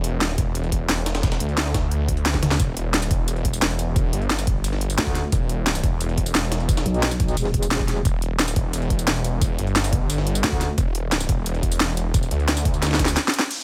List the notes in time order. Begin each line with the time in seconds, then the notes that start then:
Already playing: E1
0.04 closed hi-hat
0.21 snare, closed hi-hat
0.29 snare
0.38 E1, kick, closed hi-hat
0.55 closed hi-hat
0.64 closed hi-hat
0.72 kick, closed hi-hat
0.89 E1, snare, closed hi-hat
1.06 snare, closed hi-hat
1.15 snare, closed hi-hat
1.23 kick, snare, closed hi-hat
1.32 snare, closed hi-hat
1.40 D2, closed hi-hat
1.49 closed hi-hat
1.57 snare, closed hi-hat
1.66 snare
1.74 kick, snare, closed hi-hat
1.91 closed hi-hat
2.08 kick, closed hi-hat
2.17 closed hi-hat
2.26 snare, closed hi-hat
2.34 kick, snare
2.43 snare, closed hi-hat, mid tom
2.51 snare, closed hi-hat
2.60 E1, kick, closed hi-hat, tambourine
2.77 closed hi-hat
2.94 snare, closed hi-hat, tambourine
3.02 snare, tambourine
3.11 E1, kick, closed hi-hat
3.28 closed hi-hat, tambourine
3.36 closed hi-hat
3.45 kick, closed hi-hat
3.53 tambourine
3.62 E1, snare, closed hi-hat, tambourine
3.70 closed hi-hat
3.79 closed hi-hat, tambourine
3.96 kick, closed hi-hat, tambourine
4.13 G1, closed hi-hat
4.22 closed hi-hat
4.30 snare, closed hi-hat, tambourine
4.39 snare, tambourine
4.47 kick, closed hi-hat
4.64 closed hi-hat, open hi-hat, tambourine
4.73 snare
4.81 closed hi-hat
4.90 closed hi-hat, tambourine
4.98 D2, snare, closed hi-hat, tambourine
5.07 kick
5.15 snare, closed hi-hat, tambourine
5.32 E1, kick, closed hi-hat, tambourine
5.49 closed hi-hat
5.66 snare, closed hi-hat, tambourine
5.75 snare, tambourine
5.84 E1, kick, closed hi-hat
6.01 closed hi-hat, tambourine
6.09 closed hi-hat
6.18 kick, closed hi-hat
6.26 tambourine
6.35 E1, snare, closed hi-hat, tambourine
6.43 closed hi-hat
6.52 snare, closed hi-hat, tambourine
6.60 closed hi-hat
6.69 kick, closed hi-hat, tambourine
6.77 snare, closed hi-hat, tambourine
6.86 B1, closed hi-hat
6.94 closed hi-hat
7.03 snare, closed hi-hat, tambourine
7.11 snare, tambourine
7.20 kick, closed hi-hat
7.28 tambourine
7.37 E1, closed hi-hat, open hi-hat, tambourine
7.45 snare
7.54 kick, closed hi-hat
7.63 closed hi-hat, tambourine
7.71 snare, closed hi-hat, tambourine
7.80 kick
7.88 snare, closed hi-hat, tambourine
8.05 E1, kick, closed hi-hat, tambourine
8.22 closed hi-hat
8.39 snare, closed hi-hat, tambourine
8.48 snare, tambourine
8.56 E1, kick, closed hi-hat
8.73 closed hi-hat, tambourine
8.82 closed hi-hat
8.90 kick, closed hi-hat
8.99 tambourine
9.07 E1, snare, closed hi-hat, tambourine
9.16 closed hi-hat
9.24 closed hi-hat, tambourine
9.42 kick, closed hi-hat, tambourine
9.59 G1, closed hi-hat
9.67 closed hi-hat
9.76 snare, closed hi-hat, tambourine
9.84 snare, tambourine
9.93 kick, closed hi-hat
10.10 closed hi-hat, open hi-hat, tambourine
10.18 snare
10.27 closed hi-hat
10.35 closed hi-hat, tambourine
10.44 D2, snare, closed hi-hat, tambourine
10.52 kick
10.61 snare, closed hi-hat, tambourine
10.78 E1, kick, closed hi-hat, tambourine
10.95 closed hi-hat
11.12 snare, closed hi-hat, tambourine
11.20 snare, tambourine
11.29 E1, kick, closed hi-hat
11.46 closed hi-hat, tambourine
11.54 closed hi-hat
11.63 kick, closed hi-hat
11.72 tambourine
11.80 E1, snare, closed hi-hat, tambourine
11.89 closed hi-hat
11.97 closed hi-hat, tambourine
12.14 kick, closed hi-hat, tambourine
12.23 tambourine
12.31 D2, closed hi-hat
12.40 closed hi-hat
12.48 snare, closed hi-hat, tambourine
12.57 snare, tambourine
12.65 kick, closed hi-hat
12.74 tambourine
12.82 snare, closed hi-hat, tambourine
12.87 snare, closed hi-hat
12.91 snare, closed hi-hat
12.94 snare, closed hi-hat
12.99 kick, snare, closed hi-hat, tambourine
13.05 snare, tambourine
13.08 snare
13.16 snare, closed hi-hat, tambourine
13.28 snare
13.34 closed hi-hat, tambourine
13.39 snare, closed hi-hat
13.51 closed hi-hat, tambourine, downlifter